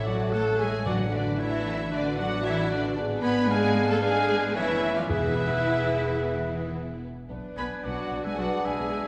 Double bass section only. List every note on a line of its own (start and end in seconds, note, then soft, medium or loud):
0.00 2.93 A1 medium
2.97 4.52 G#1 loud
4.56 5.09 F1 medium
5.10 7.06 E1 medium
7.31 7.36 B1 medium
7.57 7.63 B1 medium
7.84 7.90 B1 medium
8.11 8.16 B1 medium
8.25 8.30 B1 medium
8.39 8.44 B1 medium
8.65 8.70 B1 medium
8.79 8.84 B1 medium
8.92 8.97 B1 medium